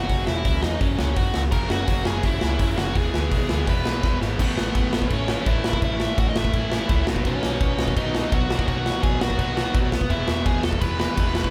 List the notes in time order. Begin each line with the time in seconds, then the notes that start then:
Already playing: F#4 F#5
0.09 F#1 F#2 C#3 F#3, kick, open hi-hat
0.26 E1 F#2 C#3 F#3 E4 E5, snare
0.45 C#2 F#2 C#3 F#3, kick, open hi-hat
0.62 E2 F#2 C#3 F#3 D#4 D#5, snare
0.80 F#1 F#2 C#3 F#3 C#4 C#5, kick, open hi-hat
0.98 C#2 F#2 C#3 F#3 C#4 C#5, snare
1.16 F#1 F#2 C#3 F#3 F#4 F#5, kick, open hi-hat
1.34 C#2 F#2 C#3 F#3, snare
1.52 F#1 F#2 C#3 F#3 A#3 C#4 A#4 A#5, kick, crash
1.69 F#1 F#2 C#3 F#3 A#3 C#4 F#4 F#5, snare
1.87 F#1 F#2 C#3 F#3 A#3 C#4, kick, open hi-hat
2.05 F#1 F#2 C#3 F#3 A#3 C#4 G#4 G#5, snare
2.23 F#1 F#2 C#3 F#3 A#3 C#4 E4 E5, kick, open hi-hat
2.41 C#2 F#2 C#3 F#3 A#3 C#4, snare
2.59 F#1 F#2 C#3 F#3 A#3 C#4, kick, open hi-hat
2.77 F#1 F#2 C#3 F#3 A#3 C#4 F#4 F#5, snare
2.95 E1 E2 B2 E3 G#3 B3 E4 G#4 G#5, kick, open hi-hat
3.13 D2 E2 B2 E3 G#3 B3 E4, snare
3.31 B1 E2 B2 E3 G#3 B3 E4, kick, open hi-hat
3.49 D2 E2 B2 E3 G#3 B3 E4, snare
3.67 E1 E2 B2 E3 G#3 B3 E4 B4 B5, kick, open hi-hat
3.85 B1 E2 B2 E3 G#3 B3 E4, snare
4.02 E1 E2 B2 E3 G#3 B3 E4, kick, snare
4.20 G#1 E2 B2 E3 G#3 B3 E4, snare
4.38 A1 A2 E3 A3 B3 C#4 E4 B4, kick, crash
4.57 A1, snare
4.75 A1, kick, crash
4.92 A1 E3 A3, snare
4.97 A2
5.02 kick
5.10 A1 A2 E3 A3 C#4 E4, kick, crash
5.14 C#5
5.28 A2 E3 A3, snare
5.45 A1 A2 E3 A3 E4 E5, kick, crash
5.64 snare
5.73 kick
5.81 A1 A2 E3 A3 C#4 E4 E5, kick, crash
6.00 snare
6.18 A1 F#4 F#5, kick, crash
6.29 D#5
6.34 A1 A2 E3 A3 E4 E5, snare
6.45 kick
6.52 A1 A2 E3 A3 C#4 E4, kick, crash
6.70 A2 E3 A3, snare
6.88 C#2 A2 E3 A3, kick, crash
7.06 B1 B2 D#3 F#3 B3 D#4, snare
7.16 kick
7.25 B1 C#4 C#5, kick, crash
7.43 B1, snare
7.60 B1 B2 F#3 B3, kick, crash
7.78 B1 B2 D#3 F#3 B3 D#4, snare
7.88 kick
7.96 B1 B2 F#3 B3 D#4 D#5, kick, crash
8.14 B2 F#3 B3, snare
8.32 B1 F#4 F#5, kick, crash
8.49 B2 D#3 F#3 B3 D#4, snare
8.59 kick
8.68 B1 F#4 F#5, kick, crash
8.86 snare
9.02 B1 B2 F#3 B3 G#4 G#5, kick, crash
9.20 B1 B2 D#3 F#3 B3 D#4 F#4 F#5, snare
9.30 kick
9.39 B1 B2 F#3 B3, kick, crash
9.56 B2 F#3 B3, snare
9.75 B1, kick, crash
9.92 B1, snare
10.01 kick
10.09 E1 E2 B2 E3 G#3 B3 E4 E5, kick, crash
10.28 E1, snare
10.46 E1 G#4 G#5, kick, crash
10.63 E1 B2 E3 A4 A5, snare
10.68 E2
10.73 kick
10.81 E1 E3 G#3 B3 E4 B4 B5, kick, crash
10.99 E2 B2 E3 B4 B5, snare
11.17 E1 E2 B2 E3, kick, crash
11.35 snare
11.44 kick